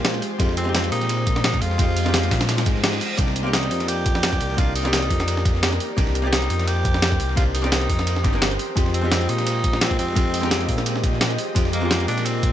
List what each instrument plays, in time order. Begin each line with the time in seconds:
Already playing: analog synth bass A#2, hollow-body jazz guitar G#3 C4 D#4 F4 G4, analog synth pad G#3 G4 C5, tenor saxophone F4
0.05 snare, closed hi-hat, ride
0.14 snare, closed hi-hat
0.22 open hi-hat, ride
0.39 analog synth bass F2, hollow-body jazz guitar G#3 C4 D#4 F4 G4, kick, closed hi-hat, ride
0.49 snare
0.57 tenor saxophone C4, closed hi-hat, ride
0.64 hollow-body jazz guitar G#3 C4 D#4 F4
0.69 hollow-body jazz guitar G4
0.75 snare, closed hi-hat, ride
0.84 closed hi-hat
0.92 analog synth bass A#2, tenor saxophone D#4, open hi-hat, ride
1.01 snare, closed hi-hat
1.09 closed hi-hat, ride
1.27 kick, closed hi-hat, ride
1.36 snare
1.44 tenor saxophone D#4, snare, closed hi-hat, ride
1.54 kick, snare, closed hi-hat
1.62 analog synth bass F2, tenor saxophone F4, open hi-hat, ride
1.71 snare
1.78 analog synth bass F2, hollow-body jazz guitar G#3 C4 D#4 F4 G4, kick, closed hi-hat, ride
1.97 closed hi-hat, open hi-hat
2.04 hollow-body jazz guitar G#3 C4 D#4 F4, snare, ride
2.08 hollow-body jazz guitar G4
2.14 snare, closed hi-hat, ride
2.23 snare, closed hi-hat
2.31 analog synth bass A#2, kick, snare, open hi-hat, ride
2.41 snare, closed hi-hat, ride
2.49 snare, closed hi-hat, ride, reverse cymbal
2.58 snare, closed hi-hat, ride
2.66 analog synth bass G#2, kick, snare, closed hi-hat, ride
2.76 snare
2.84 snare, closed hi-hat, ride
2.93 snare, closed hi-hat
3.01 open hi-hat, ride
3.17 analog synth bass C2, hollow-body jazz guitar A#3 C4 D4 D#4 G4, analog synth pad G4 A#4 D5, kick, closed hi-hat, ride
3.28 snare
3.36 closed hi-hat, ride
3.43 hollow-body jazz guitar A#3 C4 D#4 D5
3.48 hollow-body jazz guitar G4
3.53 tenor saxophone D#4, snare, closed hi-hat, ride
3.63 closed hi-hat
3.71 analog synth bass F2, open hi-hat, ride
3.80 snare, closed hi-hat
3.88 tenor saxophone G4, closed hi-hat, ride
4.06 kick, closed hi-hat, ride
4.15 snare
4.23 snare, closed hi-hat, ride
4.33 kick, snare, closed hi-hat
4.41 analog synth bass C2, open hi-hat, ride
4.50 snare
4.57 analog synth bass C2, hollow-body jazz guitar A#3 C4 D4 D#4 G4, tenor saxophone F4, kick, closed hi-hat, ride
4.75 tenor saxophone D#4, closed hi-hat, open hi-hat
4.83 hollow-body jazz guitar A#3 C4 D#4 D5, snare, ride
4.87 hollow-body jazz guitar G4
4.93 snare, closed hi-hat, ride
5.02 snare, closed hi-hat
5.10 analog synth bass F2, kick, open hi-hat, ride
5.20 snare, closed hi-hat
5.28 closed hi-hat, ride
5.37 snare
5.45 kick, snare, closed hi-hat, ride
5.55 snare
5.63 snare, closed hi-hat, ride
5.72 snare, closed hi-hat
5.80 open hi-hat, ride
5.97 analog synth bass C2, hollow-body jazz guitar A#3 C4 D4 D#4 G4, analog synth pad C5, kick, closed hi-hat, ride
6.07 snare
6.15 closed hi-hat, ride
6.22 hollow-body jazz guitar A#3 C4 D#4 D5
6.27 hollow-body jazz guitar G4
6.33 tenor saxophone D#4, snare, closed hi-hat, ride
6.42 closed hi-hat
6.50 analog synth bass F2, open hi-hat, ride
6.59 snare, closed hi-hat
6.68 tenor saxophone G4, closed hi-hat, ride
6.85 kick, closed hi-hat, ride
6.94 snare
7.02 snare, closed hi-hat, ride
7.12 kick, snare, closed hi-hat
7.20 analog synth bass C2, open hi-hat, ride
7.29 snare
7.36 analog synth bass C2, hollow-body jazz guitar A#3 C4 D4 D#4 G4, tenor saxophone F4, kick, closed hi-hat, ride
7.55 tenor saxophone D#4, closed hi-hat, open hi-hat
7.62 hollow-body jazz guitar A#3 C4 D#4 D5, snare, ride
7.66 hollow-body jazz guitar G4
7.72 snare, closed hi-hat, ride
7.82 snare, closed hi-hat
7.89 analog synth bass F2, kick, open hi-hat, ride
7.99 snare, closed hi-hat
8.07 closed hi-hat, ride
8.16 snare
8.23 analog synth bass G1, hollow-body jazz guitar A#3 C4 D4 D#4 G4, kick, snare, closed hi-hat, ride
8.33 analog synth bass G1, hollow-body jazz guitar A#3 C4 D4 D#4 A#4, snare
8.42 snare, closed hi-hat, ride
8.51 snare, closed hi-hat
8.59 analog synth pad G#3 D#5, open hi-hat, ride
8.76 analog synth bass F2, hollow-body jazz guitar G#3 C4 D#4 F4 G4, kick, closed hi-hat, ride
8.86 snare
8.94 tenor saxophone C4, closed hi-hat, ride
9.01 hollow-body jazz guitar G#3 C4 D#4 F4
9.06 hollow-body jazz guitar G4
9.12 snare, closed hi-hat, ride
9.21 closed hi-hat
9.29 analog synth bass A#2, tenor saxophone D#4, open hi-hat, ride
9.38 snare, closed hi-hat
9.47 closed hi-hat, ride
9.64 kick, closed hi-hat, ride
9.73 snare
9.81 tenor saxophone C4, snare, closed hi-hat, ride
9.91 kick, snare, closed hi-hat
9.99 analog synth bass F2, tenor saxophone C4, open hi-hat, ride
10.08 snare
10.15 analog synth bass F2, hollow-body jazz guitar G#3 C4 D#4 F4 G4, kick, closed hi-hat, ride
10.34 closed hi-hat, open hi-hat
10.41 hollow-body jazz guitar G#3 C4 D#4 F4, snare, ride
10.46 hollow-body jazz guitar G4
10.51 snare, closed hi-hat, ride
10.61 snare, closed hi-hat
10.69 analog synth bass A#2, kick, open hi-hat, ride
10.78 snare, closed hi-hat
10.86 closed hi-hat, ride
10.96 snare
11.04 kick, snare, closed hi-hat, ride
11.13 snare
11.21 snare, closed hi-hat, ride
11.30 snare, closed hi-hat
11.38 analog synth pad A#4, open hi-hat, ride
11.55 analog synth bass F2, hollow-body jazz guitar G#3 C4 D#4 F4 G4, kick, closed hi-hat, ride
11.65 snare
11.73 tenor saxophone A#3, closed hi-hat, ride
11.80 hollow-body jazz guitar G#3 C4 D#4 F4
11.85 hollow-body jazz guitar G4
11.91 snare, closed hi-hat, ride
12.00 closed hi-hat
12.08 analog synth bass A#2, tenor saxophone D4, open hi-hat, ride
12.18 snare, closed hi-hat
12.26 tenor saxophone C4, closed hi-hat, ride
12.43 kick, closed hi-hat, ride